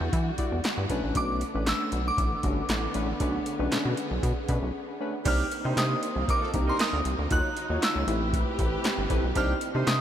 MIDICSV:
0, 0, Header, 1, 7, 480
1, 0, Start_track
1, 0, Tempo, 512821
1, 1078, Time_signature, 4, 2, 24, 8
1, 9368, End_track
2, 0, Start_track
2, 0, Title_t, "Synth bell"
2, 0, Program_c, 0, 98
2, 0, Note_on_c, 0, 91, 84
2, 806, Note_off_c, 0, 91, 0
2, 1095, Note_on_c, 0, 86, 105
2, 1534, Note_off_c, 0, 86, 0
2, 1579, Note_on_c, 0, 88, 102
2, 1945, Note_on_c, 0, 86, 86
2, 1947, Note_off_c, 0, 88, 0
2, 4411, Note_off_c, 0, 86, 0
2, 4939, Note_on_c, 0, 89, 94
2, 5376, Note_off_c, 0, 89, 0
2, 5412, Note_on_c, 0, 87, 94
2, 5899, Note_off_c, 0, 87, 0
2, 5900, Note_on_c, 0, 86, 104
2, 6266, Note_on_c, 0, 84, 81
2, 6267, Note_off_c, 0, 86, 0
2, 6312, Note_off_c, 0, 84, 0
2, 6376, Note_on_c, 0, 87, 104
2, 6854, Note_on_c, 0, 90, 121
2, 6862, Note_off_c, 0, 87, 0
2, 7293, Note_off_c, 0, 90, 0
2, 7340, Note_on_c, 0, 88, 100
2, 8012, Note_off_c, 0, 88, 0
2, 8773, Note_on_c, 0, 89, 95
2, 9212, Note_off_c, 0, 89, 0
2, 9242, Note_on_c, 0, 87, 99
2, 9368, Note_off_c, 0, 87, 0
2, 9368, End_track
3, 0, Start_track
3, 0, Title_t, "Analog polysynth"
3, 0, Program_c, 1, 90
3, 356, Note_on_c, 1, 55, 86
3, 358, Note_on_c, 1, 64, 83
3, 362, Note_on_c, 1, 66, 81
3, 363, Note_on_c, 1, 74, 92
3, 534, Note_off_c, 1, 55, 0
3, 534, Note_off_c, 1, 64, 0
3, 537, Note_off_c, 1, 66, 0
3, 537, Note_off_c, 1, 74, 0
3, 728, Note_on_c, 1, 66, 91
3, 737, Note_on_c, 1, 71, 107
3, 781, Note_off_c, 1, 66, 0
3, 785, Note_off_c, 1, 71, 0
3, 840, Note_on_c, 1, 57, 99
3, 844, Note_on_c, 1, 61, 92
3, 845, Note_on_c, 1, 62, 93
3, 848, Note_on_c, 1, 71, 111
3, 1319, Note_off_c, 1, 57, 0
3, 1321, Note_off_c, 1, 61, 0
3, 1322, Note_off_c, 1, 62, 0
3, 1323, Note_off_c, 1, 71, 0
3, 1444, Note_on_c, 1, 57, 69
3, 1448, Note_on_c, 1, 61, 68
3, 1449, Note_on_c, 1, 62, 66
3, 1454, Note_on_c, 1, 71, 83
3, 1842, Note_off_c, 1, 57, 0
3, 1844, Note_off_c, 1, 61, 0
3, 1844, Note_off_c, 1, 62, 0
3, 1847, Note_off_c, 1, 71, 0
3, 2273, Note_on_c, 1, 57, 82
3, 2274, Note_on_c, 1, 61, 67
3, 2278, Note_on_c, 1, 62, 65
3, 2278, Note_on_c, 1, 66, 84
3, 2452, Note_off_c, 1, 57, 0
3, 2452, Note_off_c, 1, 61, 0
3, 2454, Note_off_c, 1, 62, 0
3, 2454, Note_off_c, 1, 66, 0
3, 2636, Note_on_c, 1, 62, 93
3, 2645, Note_on_c, 1, 64, 99
3, 2695, Note_off_c, 1, 62, 0
3, 2699, Note_off_c, 1, 64, 0
3, 2753, Note_on_c, 1, 61, 86
3, 2755, Note_on_c, 1, 57, 90
3, 2757, Note_on_c, 1, 62, 82
3, 2762, Note_on_c, 1, 71, 106
3, 2877, Note_off_c, 1, 61, 0
3, 2878, Note_off_c, 1, 57, 0
3, 2880, Note_off_c, 1, 62, 0
3, 2882, Note_off_c, 1, 71, 0
3, 2994, Note_on_c, 1, 57, 89
3, 2997, Note_on_c, 1, 62, 89
3, 2998, Note_on_c, 1, 61, 88
3, 3004, Note_on_c, 1, 71, 103
3, 3172, Note_off_c, 1, 57, 0
3, 3174, Note_off_c, 1, 62, 0
3, 3175, Note_off_c, 1, 61, 0
3, 3177, Note_off_c, 1, 71, 0
3, 3359, Note_on_c, 1, 57, 89
3, 3360, Note_on_c, 1, 61, 84
3, 3364, Note_on_c, 1, 62, 80
3, 3366, Note_on_c, 1, 71, 106
3, 3760, Note_off_c, 1, 57, 0
3, 3760, Note_off_c, 1, 61, 0
3, 3762, Note_off_c, 1, 62, 0
3, 3763, Note_off_c, 1, 71, 0
3, 4198, Note_on_c, 1, 57, 84
3, 4201, Note_on_c, 1, 61, 84
3, 4205, Note_on_c, 1, 62, 75
3, 4206, Note_on_c, 1, 71, 94
3, 4375, Note_off_c, 1, 57, 0
3, 4376, Note_off_c, 1, 61, 0
3, 4378, Note_off_c, 1, 62, 0
3, 4378, Note_off_c, 1, 71, 0
3, 4562, Note_on_c, 1, 62, 91
3, 4572, Note_on_c, 1, 71, 105
3, 4618, Note_off_c, 1, 62, 0
3, 4623, Note_off_c, 1, 71, 0
3, 4684, Note_on_c, 1, 57, 91
3, 4687, Note_on_c, 1, 61, 77
3, 4688, Note_on_c, 1, 62, 82
3, 4692, Note_on_c, 1, 71, 98
3, 4803, Note_off_c, 1, 57, 0
3, 4804, Note_off_c, 1, 61, 0
3, 4805, Note_off_c, 1, 62, 0
3, 4807, Note_off_c, 1, 71, 0
3, 4918, Note_on_c, 1, 58, 82
3, 4919, Note_on_c, 1, 62, 72
3, 4922, Note_on_c, 1, 63, 82
3, 4925, Note_on_c, 1, 67, 72
3, 4927, Note_on_c, 1, 72, 95
3, 5094, Note_off_c, 1, 58, 0
3, 5095, Note_off_c, 1, 62, 0
3, 5097, Note_off_c, 1, 63, 0
3, 5098, Note_off_c, 1, 67, 0
3, 5099, Note_off_c, 1, 72, 0
3, 5288, Note_on_c, 1, 62, 69
3, 5289, Note_on_c, 1, 58, 73
3, 5289, Note_on_c, 1, 63, 74
3, 5294, Note_on_c, 1, 67, 72
3, 5294, Note_on_c, 1, 72, 89
3, 5684, Note_off_c, 1, 62, 0
3, 5685, Note_off_c, 1, 58, 0
3, 5685, Note_off_c, 1, 63, 0
3, 5687, Note_off_c, 1, 67, 0
3, 5687, Note_off_c, 1, 72, 0
3, 6118, Note_on_c, 1, 58, 78
3, 6119, Note_on_c, 1, 62, 70
3, 6122, Note_on_c, 1, 63, 70
3, 6125, Note_on_c, 1, 67, 72
3, 6125, Note_on_c, 1, 70, 85
3, 6469, Note_off_c, 1, 58, 0
3, 6470, Note_off_c, 1, 62, 0
3, 6471, Note_off_c, 1, 63, 0
3, 6472, Note_off_c, 1, 70, 0
3, 6473, Note_off_c, 1, 67, 0
3, 6835, Note_on_c, 1, 58, 84
3, 6837, Note_on_c, 1, 63, 72
3, 6839, Note_on_c, 1, 66, 79
3, 6840, Note_on_c, 1, 65, 78
3, 6842, Note_on_c, 1, 73, 93
3, 7013, Note_off_c, 1, 58, 0
3, 7014, Note_off_c, 1, 63, 0
3, 7015, Note_off_c, 1, 65, 0
3, 7015, Note_off_c, 1, 66, 0
3, 7016, Note_off_c, 1, 73, 0
3, 7204, Note_on_c, 1, 58, 84
3, 7206, Note_on_c, 1, 63, 65
3, 7208, Note_on_c, 1, 65, 69
3, 7210, Note_on_c, 1, 66, 72
3, 7211, Note_on_c, 1, 73, 83
3, 7553, Note_on_c, 1, 57, 84
3, 7557, Note_on_c, 1, 60, 74
3, 7558, Note_off_c, 1, 58, 0
3, 7558, Note_off_c, 1, 63, 0
3, 7559, Note_off_c, 1, 65, 0
3, 7560, Note_off_c, 1, 66, 0
3, 7560, Note_on_c, 1, 64, 82
3, 7561, Note_off_c, 1, 73, 0
3, 7562, Note_on_c, 1, 67, 68
3, 7564, Note_on_c, 1, 71, 88
3, 8326, Note_off_c, 1, 57, 0
3, 8329, Note_off_c, 1, 60, 0
3, 8330, Note_off_c, 1, 64, 0
3, 8331, Note_off_c, 1, 67, 0
3, 8332, Note_off_c, 1, 71, 0
3, 8517, Note_on_c, 1, 57, 99
3, 8519, Note_on_c, 1, 60, 95
3, 8520, Note_on_c, 1, 64, 87
3, 8524, Note_on_c, 1, 67, 91
3, 8524, Note_on_c, 1, 71, 112
3, 8640, Note_off_c, 1, 57, 0
3, 8641, Note_off_c, 1, 60, 0
3, 8641, Note_off_c, 1, 64, 0
3, 8643, Note_off_c, 1, 67, 0
3, 8643, Note_off_c, 1, 71, 0
3, 8757, Note_on_c, 1, 58, 86
3, 8759, Note_on_c, 1, 62, 80
3, 8760, Note_on_c, 1, 63, 73
3, 8764, Note_on_c, 1, 67, 76
3, 8764, Note_on_c, 1, 72, 96
3, 8934, Note_off_c, 1, 58, 0
3, 8935, Note_off_c, 1, 62, 0
3, 8935, Note_off_c, 1, 63, 0
3, 8937, Note_off_c, 1, 67, 0
3, 8938, Note_off_c, 1, 72, 0
3, 9124, Note_on_c, 1, 62, 72
3, 9126, Note_on_c, 1, 58, 76
3, 9127, Note_on_c, 1, 63, 71
3, 9128, Note_on_c, 1, 67, 65
3, 9129, Note_on_c, 1, 72, 85
3, 9368, Note_off_c, 1, 58, 0
3, 9368, Note_off_c, 1, 62, 0
3, 9368, Note_off_c, 1, 63, 0
3, 9368, Note_off_c, 1, 67, 0
3, 9368, Note_off_c, 1, 72, 0
3, 9368, End_track
4, 0, Start_track
4, 0, Title_t, "Horn section"
4, 0, Program_c, 2, 61
4, 4916, Note_on_c, 2, 51, 107
4, 4918, Note_on_c, 2, 62, 107
4, 4920, Note_on_c, 2, 67, 120
4, 5109, Note_off_c, 2, 51, 0
4, 5110, Note_off_c, 2, 62, 0
4, 5111, Note_off_c, 2, 67, 0
4, 5285, Note_on_c, 2, 72, 86
4, 5286, Note_on_c, 2, 55, 80
4, 5286, Note_on_c, 2, 63, 88
4, 5617, Note_off_c, 2, 55, 0
4, 5617, Note_off_c, 2, 63, 0
4, 5617, Note_off_c, 2, 72, 0
4, 5883, Note_on_c, 2, 55, 82
4, 5883, Note_on_c, 2, 63, 92
4, 5884, Note_on_c, 2, 70, 94
4, 5983, Note_off_c, 2, 55, 0
4, 5983, Note_off_c, 2, 63, 0
4, 5984, Note_off_c, 2, 70, 0
4, 6006, Note_on_c, 2, 57, 74
4, 6007, Note_on_c, 2, 65, 76
4, 6009, Note_on_c, 2, 69, 84
4, 6096, Note_off_c, 2, 57, 0
4, 6096, Note_off_c, 2, 65, 0
4, 6098, Note_off_c, 2, 69, 0
4, 6245, Note_on_c, 2, 70, 95
4, 6247, Note_on_c, 2, 55, 92
4, 6247, Note_on_c, 2, 63, 93
4, 6336, Note_off_c, 2, 70, 0
4, 6337, Note_off_c, 2, 55, 0
4, 6337, Note_off_c, 2, 63, 0
4, 6356, Note_on_c, 2, 55, 92
4, 6356, Note_on_c, 2, 63, 96
4, 6356, Note_on_c, 2, 70, 112
4, 6549, Note_off_c, 2, 55, 0
4, 6549, Note_off_c, 2, 63, 0
4, 6549, Note_off_c, 2, 70, 0
4, 8758, Note_on_c, 2, 51, 110
4, 8759, Note_on_c, 2, 62, 106
4, 8759, Note_on_c, 2, 67, 109
4, 8950, Note_off_c, 2, 51, 0
4, 8951, Note_off_c, 2, 62, 0
4, 8951, Note_off_c, 2, 67, 0
4, 9124, Note_on_c, 2, 72, 96
4, 9126, Note_on_c, 2, 55, 79
4, 9126, Note_on_c, 2, 63, 82
4, 9368, Note_off_c, 2, 55, 0
4, 9368, Note_off_c, 2, 63, 0
4, 9368, Note_off_c, 2, 72, 0
4, 9368, End_track
5, 0, Start_track
5, 0, Title_t, "String section"
5, 0, Program_c, 3, 48
5, 0, Note_on_c, 3, 50, 76
5, 0, Note_on_c, 3, 55, 66
5, 0, Note_on_c, 3, 66, 77
5, 802, Note_off_c, 3, 55, 0
5, 804, Note_off_c, 3, 50, 0
5, 826, Note_off_c, 3, 66, 0
5, 842, Note_on_c, 3, 57, 63
5, 844, Note_on_c, 3, 50, 79
5, 844, Note_on_c, 3, 59, 81
5, 2741, Note_off_c, 3, 57, 0
5, 2768, Note_on_c, 3, 68, 66
5, 4884, Note_off_c, 3, 50, 0
5, 4884, Note_off_c, 3, 59, 0
5, 4901, Note_off_c, 3, 68, 0
5, 4922, Note_on_c, 3, 60, 87
5, 4926, Note_on_c, 3, 51, 78
5, 4927, Note_on_c, 3, 58, 75
5, 6821, Note_off_c, 3, 60, 0
5, 6823, Note_off_c, 3, 51, 0
5, 6823, Note_off_c, 3, 58, 0
5, 6846, Note_on_c, 3, 63, 90
5, 6847, Note_on_c, 3, 49, 76
5, 6852, Note_on_c, 3, 54, 71
5, 7555, Note_off_c, 3, 63, 0
5, 7556, Note_off_c, 3, 49, 0
5, 7558, Note_off_c, 3, 54, 0
5, 7570, Note_on_c, 3, 48, 76
5, 7572, Note_on_c, 3, 67, 93
5, 7572, Note_on_c, 3, 71, 72
5, 8752, Note_off_c, 3, 48, 0
5, 8753, Note_off_c, 3, 67, 0
5, 8753, Note_off_c, 3, 71, 0
5, 8761, Note_on_c, 3, 60, 85
5, 8763, Note_on_c, 3, 58, 71
5, 8764, Note_on_c, 3, 51, 83
5, 9368, Note_off_c, 3, 51, 0
5, 9368, Note_off_c, 3, 58, 0
5, 9368, Note_off_c, 3, 60, 0
5, 9368, End_track
6, 0, Start_track
6, 0, Title_t, "Analog synth bass"
6, 0, Program_c, 4, 38
6, 6, Note_on_c, 4, 40, 93
6, 87, Note_off_c, 4, 40, 0
6, 120, Note_on_c, 4, 52, 99
6, 291, Note_off_c, 4, 52, 0
6, 487, Note_on_c, 4, 40, 78
6, 567, Note_off_c, 4, 40, 0
6, 726, Note_on_c, 4, 43, 94
6, 806, Note_off_c, 4, 43, 0
6, 841, Note_on_c, 4, 35, 77
6, 931, Note_off_c, 4, 35, 0
6, 965, Note_on_c, 4, 33, 83
6, 1046, Note_off_c, 4, 33, 0
6, 1079, Note_on_c, 4, 35, 106
6, 1342, Note_off_c, 4, 35, 0
6, 1449, Note_on_c, 4, 33, 99
6, 1619, Note_off_c, 4, 33, 0
6, 1800, Note_on_c, 4, 35, 94
6, 1971, Note_off_c, 4, 35, 0
6, 2037, Note_on_c, 4, 33, 101
6, 2209, Note_off_c, 4, 33, 0
6, 2279, Note_on_c, 4, 31, 98
6, 2451, Note_off_c, 4, 31, 0
6, 2518, Note_on_c, 4, 33, 95
6, 2690, Note_off_c, 4, 33, 0
6, 2762, Note_on_c, 4, 33, 88
6, 2932, Note_off_c, 4, 33, 0
6, 2999, Note_on_c, 4, 35, 101
6, 3171, Note_off_c, 4, 35, 0
6, 3366, Note_on_c, 4, 35, 97
6, 3446, Note_off_c, 4, 35, 0
6, 3485, Note_on_c, 4, 47, 49
6, 3534, Note_off_c, 4, 47, 0
6, 3606, Note_on_c, 4, 47, 97
6, 3687, Note_off_c, 4, 47, 0
6, 3846, Note_on_c, 4, 35, 88
6, 3927, Note_off_c, 4, 35, 0
6, 3958, Note_on_c, 4, 47, 105
6, 4049, Note_off_c, 4, 47, 0
6, 4201, Note_on_c, 4, 47, 105
6, 4291, Note_off_c, 4, 47, 0
6, 4327, Note_on_c, 4, 35, 83
6, 4407, Note_off_c, 4, 35, 0
6, 4919, Note_on_c, 4, 36, 115
6, 5091, Note_off_c, 4, 36, 0
6, 5288, Note_on_c, 4, 48, 94
6, 5368, Note_off_c, 4, 48, 0
6, 5398, Note_on_c, 4, 48, 102
6, 5570, Note_off_c, 4, 48, 0
6, 5764, Note_on_c, 4, 36, 94
6, 5845, Note_off_c, 4, 36, 0
6, 6121, Note_on_c, 4, 36, 86
6, 6292, Note_off_c, 4, 36, 0
6, 6487, Note_on_c, 4, 38, 101
6, 6567, Note_off_c, 4, 38, 0
6, 6601, Note_on_c, 4, 36, 100
6, 6691, Note_off_c, 4, 36, 0
6, 6727, Note_on_c, 4, 38, 87
6, 6807, Note_off_c, 4, 38, 0
6, 6843, Note_on_c, 4, 39, 106
6, 6932, Note_off_c, 4, 39, 0
6, 7205, Note_on_c, 4, 39, 92
6, 7286, Note_off_c, 4, 39, 0
6, 7447, Note_on_c, 4, 37, 97
6, 7527, Note_off_c, 4, 37, 0
6, 7556, Note_on_c, 4, 33, 108
6, 7900, Note_off_c, 4, 33, 0
6, 8038, Note_on_c, 4, 33, 96
6, 8210, Note_off_c, 4, 33, 0
6, 8404, Note_on_c, 4, 31, 97
6, 8485, Note_off_c, 4, 31, 0
6, 8518, Note_on_c, 4, 33, 87
6, 8609, Note_off_c, 4, 33, 0
6, 8646, Note_on_c, 4, 35, 80
6, 8727, Note_off_c, 4, 35, 0
6, 8760, Note_on_c, 4, 36, 112
6, 8931, Note_off_c, 4, 36, 0
6, 9125, Note_on_c, 4, 48, 94
6, 9206, Note_off_c, 4, 48, 0
6, 9240, Note_on_c, 4, 48, 104
6, 9368, Note_off_c, 4, 48, 0
6, 9368, End_track
7, 0, Start_track
7, 0, Title_t, "Drums"
7, 118, Note_on_c, 9, 36, 113
7, 121, Note_on_c, 9, 42, 83
7, 212, Note_off_c, 9, 36, 0
7, 215, Note_off_c, 9, 42, 0
7, 356, Note_on_c, 9, 42, 73
7, 359, Note_on_c, 9, 36, 75
7, 449, Note_off_c, 9, 42, 0
7, 453, Note_off_c, 9, 36, 0
7, 598, Note_on_c, 9, 42, 77
7, 607, Note_on_c, 9, 38, 109
7, 608, Note_on_c, 9, 39, 78
7, 691, Note_off_c, 9, 42, 0
7, 701, Note_off_c, 9, 38, 0
7, 702, Note_off_c, 9, 39, 0
7, 839, Note_on_c, 9, 42, 70
7, 840, Note_on_c, 9, 36, 80
7, 932, Note_off_c, 9, 42, 0
7, 934, Note_off_c, 9, 36, 0
7, 1078, Note_on_c, 9, 42, 89
7, 1080, Note_on_c, 9, 36, 106
7, 1171, Note_off_c, 9, 42, 0
7, 1173, Note_off_c, 9, 36, 0
7, 1320, Note_on_c, 9, 42, 66
7, 1414, Note_off_c, 9, 42, 0
7, 1559, Note_on_c, 9, 42, 80
7, 1563, Note_on_c, 9, 38, 102
7, 1564, Note_on_c, 9, 39, 79
7, 1653, Note_off_c, 9, 42, 0
7, 1656, Note_off_c, 9, 38, 0
7, 1658, Note_off_c, 9, 39, 0
7, 1797, Note_on_c, 9, 42, 74
7, 1891, Note_off_c, 9, 42, 0
7, 2039, Note_on_c, 9, 36, 105
7, 2043, Note_on_c, 9, 42, 86
7, 2133, Note_off_c, 9, 36, 0
7, 2136, Note_off_c, 9, 42, 0
7, 2276, Note_on_c, 9, 42, 72
7, 2279, Note_on_c, 9, 36, 86
7, 2370, Note_off_c, 9, 42, 0
7, 2373, Note_off_c, 9, 36, 0
7, 2516, Note_on_c, 9, 42, 79
7, 2525, Note_on_c, 9, 38, 105
7, 2526, Note_on_c, 9, 39, 89
7, 2609, Note_off_c, 9, 42, 0
7, 2618, Note_off_c, 9, 38, 0
7, 2620, Note_off_c, 9, 39, 0
7, 2754, Note_on_c, 9, 42, 73
7, 2848, Note_off_c, 9, 42, 0
7, 2996, Note_on_c, 9, 42, 84
7, 2999, Note_on_c, 9, 36, 114
7, 3089, Note_off_c, 9, 42, 0
7, 3092, Note_off_c, 9, 36, 0
7, 3239, Note_on_c, 9, 42, 73
7, 3333, Note_off_c, 9, 42, 0
7, 3480, Note_on_c, 9, 42, 95
7, 3484, Note_on_c, 9, 38, 102
7, 3485, Note_on_c, 9, 39, 82
7, 3574, Note_off_c, 9, 42, 0
7, 3578, Note_off_c, 9, 38, 0
7, 3579, Note_off_c, 9, 39, 0
7, 3720, Note_on_c, 9, 42, 75
7, 3813, Note_off_c, 9, 42, 0
7, 3959, Note_on_c, 9, 36, 99
7, 3962, Note_on_c, 9, 42, 84
7, 4053, Note_off_c, 9, 36, 0
7, 4056, Note_off_c, 9, 42, 0
7, 4198, Note_on_c, 9, 42, 71
7, 4200, Note_on_c, 9, 36, 82
7, 4292, Note_off_c, 9, 42, 0
7, 4294, Note_off_c, 9, 36, 0
7, 4918, Note_on_c, 9, 42, 94
7, 4918, Note_on_c, 9, 49, 92
7, 4920, Note_on_c, 9, 36, 115
7, 5012, Note_off_c, 9, 42, 0
7, 5012, Note_off_c, 9, 49, 0
7, 5013, Note_off_c, 9, 36, 0
7, 5162, Note_on_c, 9, 42, 76
7, 5256, Note_off_c, 9, 42, 0
7, 5402, Note_on_c, 9, 42, 94
7, 5406, Note_on_c, 9, 38, 107
7, 5408, Note_on_c, 9, 39, 89
7, 5496, Note_off_c, 9, 42, 0
7, 5500, Note_off_c, 9, 38, 0
7, 5501, Note_off_c, 9, 39, 0
7, 5642, Note_on_c, 9, 42, 80
7, 5735, Note_off_c, 9, 42, 0
7, 5880, Note_on_c, 9, 36, 106
7, 5885, Note_on_c, 9, 42, 86
7, 5974, Note_off_c, 9, 36, 0
7, 5979, Note_off_c, 9, 42, 0
7, 6118, Note_on_c, 9, 42, 76
7, 6120, Note_on_c, 9, 36, 95
7, 6211, Note_off_c, 9, 42, 0
7, 6214, Note_off_c, 9, 36, 0
7, 6358, Note_on_c, 9, 42, 95
7, 6368, Note_on_c, 9, 38, 110
7, 6369, Note_on_c, 9, 39, 90
7, 6452, Note_off_c, 9, 42, 0
7, 6461, Note_off_c, 9, 38, 0
7, 6463, Note_off_c, 9, 39, 0
7, 6601, Note_on_c, 9, 42, 80
7, 6694, Note_off_c, 9, 42, 0
7, 6838, Note_on_c, 9, 42, 94
7, 6840, Note_on_c, 9, 36, 121
7, 6932, Note_off_c, 9, 42, 0
7, 6934, Note_off_c, 9, 36, 0
7, 7082, Note_on_c, 9, 42, 76
7, 7176, Note_off_c, 9, 42, 0
7, 7323, Note_on_c, 9, 42, 92
7, 7327, Note_on_c, 9, 38, 107
7, 7328, Note_on_c, 9, 39, 94
7, 7416, Note_off_c, 9, 42, 0
7, 7420, Note_off_c, 9, 38, 0
7, 7422, Note_off_c, 9, 39, 0
7, 7561, Note_on_c, 9, 42, 78
7, 7655, Note_off_c, 9, 42, 0
7, 7798, Note_on_c, 9, 36, 113
7, 7803, Note_on_c, 9, 42, 90
7, 7892, Note_off_c, 9, 36, 0
7, 7897, Note_off_c, 9, 42, 0
7, 8038, Note_on_c, 9, 42, 77
7, 8039, Note_on_c, 9, 36, 93
7, 8132, Note_off_c, 9, 42, 0
7, 8133, Note_off_c, 9, 36, 0
7, 8276, Note_on_c, 9, 42, 82
7, 8285, Note_on_c, 9, 38, 110
7, 8286, Note_on_c, 9, 39, 87
7, 8370, Note_off_c, 9, 42, 0
7, 8379, Note_off_c, 9, 38, 0
7, 8380, Note_off_c, 9, 39, 0
7, 8517, Note_on_c, 9, 42, 73
7, 8518, Note_on_c, 9, 36, 90
7, 8611, Note_off_c, 9, 42, 0
7, 8612, Note_off_c, 9, 36, 0
7, 8756, Note_on_c, 9, 42, 91
7, 8757, Note_on_c, 9, 36, 112
7, 8850, Note_off_c, 9, 42, 0
7, 8851, Note_off_c, 9, 36, 0
7, 8996, Note_on_c, 9, 42, 81
7, 9090, Note_off_c, 9, 42, 0
7, 9238, Note_on_c, 9, 42, 94
7, 9242, Note_on_c, 9, 38, 111
7, 9244, Note_on_c, 9, 39, 89
7, 9332, Note_off_c, 9, 42, 0
7, 9336, Note_off_c, 9, 38, 0
7, 9337, Note_off_c, 9, 39, 0
7, 9368, End_track
0, 0, End_of_file